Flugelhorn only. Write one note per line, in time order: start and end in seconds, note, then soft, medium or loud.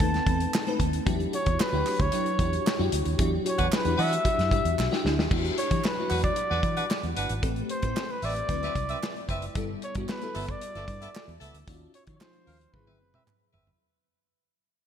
0.00 0.76 A5 medium
1.35 1.63 C#5 loud
1.61 2.02 B4 loud
2.01 2.93 C#5 loud
3.48 3.76 C#5 medium
3.75 4.02 B4 medium
4.01 5.06 E5 loud
5.58 5.87 C#5 medium
5.85 6.23 B4 loud
6.23 7.13 D5 loud
7.71 8.13 C5 loud
8.11 8.26 B4 medium
8.25 9.30 D5 loud
9.84 9.95 C#5 medium
10.10 10.52 B4 medium
10.50 11.42 D5 loud
11.95 12.04 C#5 medium
12.15 12.22 C#5 medium
12.20 12.75 C5 loud
12.73 13.53 B4 medium